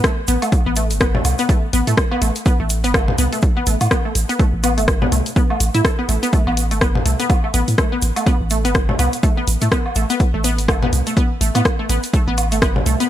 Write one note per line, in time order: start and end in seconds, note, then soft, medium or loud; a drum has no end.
0.04 0.11 A3 medium
0.04 kick loud
0.04 cross-stick loud
0.04 closed hi-hat soft
0.04 shaker soft
0.27 0.37 A1 loud
0.27 0.33 B3 loud
0.27 closed hi-hat medium
0.27 shaker loud
0.42 0.47 A3 medium
0.42 closed hi-hat medium
0.42 low woodblock soft
0.42 shaker medium
0.52 kick loud
0.52 closed hi-hat soft
0.52 shaker soft
0.66 0.92 A1 loud
0.66 0.70 B3 loud
0.76 0.84 A3 medium
0.76 closed hi-hat medium
0.76 shaker medium
0.90 1.16 G1 loud
0.90 closed hi-hat medium
0.90 shaker medium
1.00 1.05 B3 loud
1.00 kick loud
1.00 cross-stick loud
1.00 closed hi-hat soft
1.00 shaker soft
1.15 1.21 A1 loud
1.15 1.20 A3 medium
1.15 low conga loud
1.25 1.34 C2 medium
1.25 closed hi-hat loud
1.25 low woodblock soft
1.25 shaker medium
1.38 1.42 B3 loud
1.38 closed hi-hat medium
1.38 shaker medium
1.49 1.56 A3 medium
1.49 kick loud
1.49 closed hi-hat soft
1.49 shaker soft
1.73 1.83 A1 loud
1.73 1.78 B3 loud
1.73 closed hi-hat loud
1.73 shaker medium
1.87 1.94 A2 medium
1.87 1.93 A3 medium
1.87 closed hi-hat medium
1.87 shaker medium
1.97 kick loud
1.97 cross-stick loud
1.97 closed hi-hat soft
1.97 shaker soft
2.11 2.15 B3 loud
2.11 low woodblock soft
2.21 2.31 A1 loud
2.21 2.29 A3 medium
2.21 closed hi-hat loud
2.21 shaker medium
2.36 closed hi-hat medium
2.36 shaker medium
2.46 2.51 B3 loud
2.46 kick loud
2.46 closed hi-hat soft
2.46 shaker soft
2.60 2.86 A1 loud
2.60 2.65 A3 medium
2.70 closed hi-hat medium
2.70 shaker medium
2.84 3.10 G1 loud
2.84 2.87 B3 loud
2.84 closed hi-hat medium
2.84 shaker medium
2.94 3.01 A3 medium
2.94 kick loud
2.94 cross-stick loud
2.94 closed hi-hat soft
2.94 low woodblock soft
2.94 shaker soft
3.08 3.15 A1 loud
3.08 low conga loud
3.18 3.28 C2 medium
3.18 3.23 B3 loud
3.18 closed hi-hat loud
3.18 shaker loud
3.32 3.38 A3 medium
3.32 closed hi-hat medium
3.32 shaker medium
3.42 kick loud
3.42 closed hi-hat soft
3.42 shaker soft
3.57 3.60 B3 loud
3.67 3.76 A1 loud
3.67 3.74 A3 medium
3.67 closed hi-hat loud
3.67 shaker medium
3.81 3.88 A2 medium
3.81 closed hi-hat medium
3.81 low woodblock soft
3.81 shaker medium
3.91 3.96 B3 loud
3.91 kick loud
3.91 cross-stick medium
3.91 closed hi-hat soft
3.91 shaker soft
4.05 4.10 A3 medium
4.15 4.25 A1 loud
4.15 closed hi-hat loud
4.15 shaker medium
4.29 4.33 B3 loud
4.29 closed hi-hat medium
4.29 shaker medium
4.39 4.47 A3 medium
4.39 kick loud
4.39 closed hi-hat soft
4.39 shaker soft
4.54 4.79 A1 loud
4.64 4.68 B3 loud
4.64 closed hi-hat medium
4.64 low woodblock soft
4.64 shaker loud
4.78 5.04 G1 loud
4.78 4.83 A3 medium
4.78 closed hi-hat medium
4.78 shaker medium
4.88 kick loud
4.88 cross-stick medium
4.88 closed hi-hat soft
4.88 shaker soft
5.02 5.09 A1 loud
5.02 5.05 B3 loud
5.02 low conga loud
5.12 5.21 C2 medium
5.12 5.19 A3 medium
5.12 closed hi-hat loud
5.12 shaker medium
5.26 closed hi-hat medium
5.26 shaker medium
5.36 5.41 B3 loud
5.36 kick loud
5.36 closed hi-hat soft
5.36 shaker soft
5.50 5.55 A3 medium
5.50 low woodblock soft
5.60 5.70 A1 loud
5.60 closed hi-hat loud
5.60 shaker loud
5.74 5.81 A2 medium
5.74 5.80 E4 loud
5.74 closed hi-hat soft
5.74 shaker medium
5.85 5.89 A4 medium
5.85 kick loud
5.85 cross-stick medium
5.85 closed hi-hat soft
5.85 shaker soft
5.99 6.01 B3 loud
6.09 6.18 A1 loud
6.09 6.12 A3 medium
6.09 closed hi-hat loud
6.09 shaker medium
6.23 6.25 B3 loud
6.23 closed hi-hat medium
6.23 shaker medium
6.33 6.40 A3 medium
6.33 kick loud
6.33 closed hi-hat soft
6.33 shaker soft
6.47 6.73 A1 loud
6.47 6.50 B3 loud
6.47 low woodblock soft
6.57 closed hi-hat medium
6.57 shaker medium
6.71 6.97 G1 loud
6.71 6.76 A3 medium
6.71 closed hi-hat medium
6.71 shaker medium
6.81 6.86 B3 loud
6.81 kick loud
6.81 cross-stick medium
6.81 closed hi-hat soft
6.81 shaker soft
6.95 7.02 A1 loud
6.95 low conga medium
7.05 7.15 C2 medium
7.05 7.13 A3 medium
7.05 closed hi-hat medium
7.05 shaker medium
7.20 7.23 B3 loud
7.20 closed hi-hat soft
7.20 shaker medium
7.30 kick loud
7.30 closed hi-hat soft
7.30 low woodblock soft
7.30 shaker soft
7.44 7.49 A3 medium
7.54 7.63 A1 loud
7.54 7.59 B3 loud
7.54 closed hi-hat medium
7.54 shaker medium
7.68 7.75 A2 medium
7.68 closed hi-hat medium
7.68 shaker medium
7.78 7.85 A3 medium
7.78 kick loud
7.78 cross-stick medium
7.78 closed hi-hat soft
7.78 shaker soft
7.92 7.96 B3 loud
8.02 8.12 A1 loud
8.02 closed hi-hat loud
8.02 shaker medium
8.16 8.22 A3 medium
8.16 closed hi-hat medium
8.16 low woodblock soft
8.16 shaker medium
8.26 8.31 B3 loud
8.26 kick loud
8.26 closed hi-hat soft
8.26 shaker soft
8.41 8.66 A1 loud
8.50 8.58 A3 medium
8.50 closed hi-hat medium
8.50 shaker medium
8.65 8.91 G1 loud
8.65 8.68 B3 loud
8.65 closed hi-hat medium
8.65 shaker soft
8.75 kick loud
8.75 cross-stick medium
8.75 closed hi-hat soft
8.75 shaker soft
8.89 8.96 A1 loud
8.89 8.94 A3 medium
8.89 low conga medium
8.99 9.08 C2 medium
8.99 9.04 B3 loud
8.99 closed hi-hat medium
8.99 low woodblock soft
8.99 shaker medium
9.13 closed hi-hat medium
9.13 shaker medium
9.23 9.30 A3 medium
9.23 kick loud
9.23 closed hi-hat soft
9.23 shaker soft
9.37 9.41 B3 loud
9.48 9.57 A1 loud
9.48 closed hi-hat medium
9.48 shaker medium
9.61 9.68 A2 medium
9.61 9.67 A3 medium
9.61 closed hi-hat medium
9.61 shaker medium
9.72 9.76 B3 loud
9.72 kick loud
9.72 cross-stick medium
9.72 closed hi-hat soft
9.72 shaker soft
9.86 low woodblock soft
9.95 10.05 A1 loud
9.95 10.03 A3 medium
9.95 closed hi-hat medium
9.95 shaker medium
10.10 10.13 B3 loud
10.10 closed hi-hat medium
10.10 shaker medium
10.20 kick loud
10.20 closed hi-hat soft
10.20 shaker soft
10.34 10.60 A1 loud
10.34 10.39 A3 medium
10.44 10.49 B3 loud
10.44 closed hi-hat medium
10.44 shaker medium
10.58 10.84 G1 loud
10.58 closed hi-hat medium
10.58 shaker medium
10.68 10.76 A3 medium
10.68 kick loud
10.68 cross-stick medium
10.68 closed hi-hat soft
10.68 low woodblock soft
10.68 shaker soft
10.82 10.89 A1 loud
10.82 10.86 B3 loud
10.82 low conga medium
10.93 11.02 C2 medium
10.93 closed hi-hat medium
10.93 shaker medium
11.07 11.12 A3 medium
11.07 closed hi-hat medium
11.07 shaker medium
11.17 11.21 B3 loud
11.17 kick loud
11.17 closed hi-hat soft
11.17 shaker soft
11.41 11.50 A1 loud
11.41 11.48 A3 medium
11.41 closed hi-hat medium
11.41 shaker medium
11.55 11.62 A2 medium
11.55 11.58 B3 loud
11.55 closed hi-hat medium
11.55 low woodblock soft
11.55 shaker medium
11.65 kick loud
11.65 cross-stick medium
11.65 closed hi-hat soft
11.65 shaker soft
11.79 11.84 A3 medium
11.89 11.99 A1 loud
11.89 11.94 B3 loud
11.89 closed hi-hat medium
11.89 shaker medium
12.03 closed hi-hat medium
12.03 shaker medium
12.13 12.21 A3 medium
12.13 kick loud
12.13 closed hi-hat soft
12.13 shaker soft
12.28 12.53 A1 loud
12.28 12.31 B3 loud
12.38 closed hi-hat medium
12.38 low woodblock soft
12.38 shaker medium
12.52 12.77 G1 loud
12.52 12.57 A3 medium
12.52 closed hi-hat medium
12.52 shaker medium
12.62 12.67 B3 loud
12.62 kick loud
12.62 cross-stick loud
12.62 closed hi-hat soft
12.62 shaker soft
12.76 12.83 A1 loud
12.76 low conga loud
12.86 12.95 C2 medium
12.86 12.93 A3 medium
12.86 closed hi-hat medium
12.86 shaker medium
13.00 13.04 B3 loud
13.00 closed hi-hat medium
13.00 shaker medium